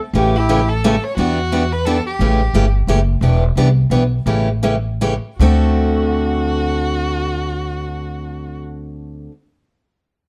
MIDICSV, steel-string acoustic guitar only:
0, 0, Header, 1, 2, 480
1, 0, Start_track
1, 0, Tempo, 341297
1, 205, Time_signature, 3, 2, 24, 8
1, 5005, Tempo, 355661
1, 6445, Tempo, 385109
1, 7405, Tempo, 401606
1, 13246, End_track
2, 0, Start_track
2, 0, Title_t, "Steel-string acoustic guitar"
2, 0, Program_c, 0, 25
2, 207, Note_on_c, 0, 49, 72
2, 212, Note_on_c, 0, 52, 71
2, 212, Note_on_c, 0, 57, 70
2, 215, Note_on_c, 0, 61, 71
2, 218, Note_on_c, 0, 67, 72
2, 490, Note_off_c, 0, 49, 0
2, 492, Note_off_c, 0, 52, 0
2, 493, Note_off_c, 0, 57, 0
2, 494, Note_off_c, 0, 61, 0
2, 495, Note_off_c, 0, 67, 0
2, 689, Note_on_c, 0, 49, 80
2, 694, Note_on_c, 0, 57, 79
2, 695, Note_on_c, 0, 52, 91
2, 697, Note_on_c, 0, 61, 83
2, 699, Note_on_c, 0, 67, 91
2, 837, Note_off_c, 0, 49, 0
2, 840, Note_off_c, 0, 52, 0
2, 840, Note_off_c, 0, 57, 0
2, 841, Note_off_c, 0, 61, 0
2, 842, Note_off_c, 0, 67, 0
2, 1184, Note_on_c, 0, 52, 88
2, 1186, Note_on_c, 0, 49, 87
2, 1190, Note_on_c, 0, 57, 98
2, 1192, Note_on_c, 0, 61, 87
2, 1193, Note_on_c, 0, 67, 93
2, 1325, Note_off_c, 0, 52, 0
2, 1326, Note_off_c, 0, 49, 0
2, 1328, Note_off_c, 0, 57, 0
2, 1328, Note_off_c, 0, 61, 0
2, 1329, Note_off_c, 0, 67, 0
2, 1656, Note_on_c, 0, 52, 67
2, 1661, Note_on_c, 0, 59, 68
2, 1667, Note_on_c, 0, 62, 72
2, 1668, Note_on_c, 0, 67, 69
2, 1934, Note_off_c, 0, 52, 0
2, 1936, Note_off_c, 0, 59, 0
2, 1940, Note_off_c, 0, 62, 0
2, 1940, Note_off_c, 0, 67, 0
2, 2140, Note_on_c, 0, 52, 77
2, 2144, Note_on_c, 0, 59, 75
2, 2146, Note_on_c, 0, 62, 80
2, 2150, Note_on_c, 0, 67, 86
2, 2282, Note_off_c, 0, 52, 0
2, 2284, Note_off_c, 0, 59, 0
2, 2285, Note_off_c, 0, 62, 0
2, 2287, Note_off_c, 0, 67, 0
2, 2621, Note_on_c, 0, 52, 76
2, 2624, Note_on_c, 0, 59, 76
2, 2626, Note_on_c, 0, 62, 81
2, 2629, Note_on_c, 0, 67, 88
2, 2762, Note_off_c, 0, 52, 0
2, 2764, Note_off_c, 0, 59, 0
2, 2765, Note_off_c, 0, 62, 0
2, 2767, Note_off_c, 0, 67, 0
2, 3100, Note_on_c, 0, 49, 62
2, 3105, Note_on_c, 0, 52, 65
2, 3106, Note_on_c, 0, 57, 63
2, 3110, Note_on_c, 0, 61, 68
2, 3117, Note_on_c, 0, 67, 74
2, 3376, Note_off_c, 0, 49, 0
2, 3378, Note_off_c, 0, 52, 0
2, 3379, Note_off_c, 0, 57, 0
2, 3380, Note_off_c, 0, 61, 0
2, 3384, Note_off_c, 0, 67, 0
2, 3578, Note_on_c, 0, 49, 76
2, 3581, Note_on_c, 0, 52, 81
2, 3582, Note_on_c, 0, 57, 76
2, 3589, Note_on_c, 0, 61, 87
2, 3590, Note_on_c, 0, 67, 90
2, 3721, Note_off_c, 0, 49, 0
2, 3722, Note_off_c, 0, 52, 0
2, 3723, Note_off_c, 0, 57, 0
2, 3726, Note_off_c, 0, 61, 0
2, 3727, Note_off_c, 0, 67, 0
2, 4056, Note_on_c, 0, 49, 75
2, 4056, Note_on_c, 0, 52, 76
2, 4060, Note_on_c, 0, 57, 84
2, 4062, Note_on_c, 0, 61, 90
2, 4069, Note_on_c, 0, 67, 96
2, 4200, Note_off_c, 0, 49, 0
2, 4200, Note_off_c, 0, 52, 0
2, 4202, Note_off_c, 0, 57, 0
2, 4203, Note_off_c, 0, 61, 0
2, 4207, Note_off_c, 0, 67, 0
2, 4534, Note_on_c, 0, 52, 66
2, 4540, Note_on_c, 0, 62, 69
2, 4541, Note_on_c, 0, 59, 68
2, 4547, Note_on_c, 0, 67, 69
2, 4813, Note_off_c, 0, 52, 0
2, 4816, Note_off_c, 0, 62, 0
2, 4817, Note_off_c, 0, 59, 0
2, 4820, Note_off_c, 0, 67, 0
2, 5021, Note_on_c, 0, 52, 71
2, 5026, Note_on_c, 0, 59, 82
2, 5030, Note_on_c, 0, 62, 85
2, 5034, Note_on_c, 0, 67, 84
2, 5159, Note_off_c, 0, 52, 0
2, 5162, Note_off_c, 0, 59, 0
2, 5163, Note_off_c, 0, 62, 0
2, 5165, Note_off_c, 0, 67, 0
2, 5481, Note_on_c, 0, 52, 74
2, 5483, Note_on_c, 0, 59, 82
2, 5489, Note_on_c, 0, 62, 83
2, 5491, Note_on_c, 0, 67, 83
2, 5626, Note_off_c, 0, 52, 0
2, 5627, Note_off_c, 0, 59, 0
2, 5630, Note_off_c, 0, 62, 0
2, 5631, Note_off_c, 0, 67, 0
2, 5958, Note_on_c, 0, 49, 58
2, 5960, Note_on_c, 0, 57, 62
2, 5961, Note_on_c, 0, 52, 68
2, 5970, Note_on_c, 0, 61, 66
2, 5970, Note_on_c, 0, 67, 67
2, 6245, Note_off_c, 0, 49, 0
2, 6246, Note_off_c, 0, 52, 0
2, 6246, Note_off_c, 0, 57, 0
2, 6251, Note_off_c, 0, 61, 0
2, 6251, Note_off_c, 0, 67, 0
2, 6447, Note_on_c, 0, 49, 74
2, 6450, Note_on_c, 0, 52, 78
2, 6456, Note_on_c, 0, 57, 78
2, 6456, Note_on_c, 0, 61, 79
2, 6461, Note_on_c, 0, 67, 82
2, 6591, Note_off_c, 0, 49, 0
2, 6593, Note_off_c, 0, 52, 0
2, 6596, Note_off_c, 0, 57, 0
2, 6596, Note_off_c, 0, 61, 0
2, 6598, Note_off_c, 0, 67, 0
2, 6926, Note_on_c, 0, 49, 76
2, 6930, Note_on_c, 0, 52, 75
2, 6931, Note_on_c, 0, 57, 76
2, 6932, Note_on_c, 0, 61, 86
2, 6937, Note_on_c, 0, 67, 84
2, 7072, Note_off_c, 0, 49, 0
2, 7074, Note_off_c, 0, 52, 0
2, 7074, Note_off_c, 0, 57, 0
2, 7075, Note_off_c, 0, 61, 0
2, 7077, Note_off_c, 0, 67, 0
2, 7416, Note_on_c, 0, 50, 82
2, 7424, Note_on_c, 0, 57, 78
2, 7429, Note_on_c, 0, 60, 82
2, 7437, Note_on_c, 0, 66, 81
2, 7442, Note_on_c, 0, 69, 85
2, 12083, Note_off_c, 0, 50, 0
2, 12087, Note_off_c, 0, 57, 0
2, 12090, Note_off_c, 0, 60, 0
2, 12094, Note_off_c, 0, 66, 0
2, 12096, Note_off_c, 0, 69, 0
2, 13246, End_track
0, 0, End_of_file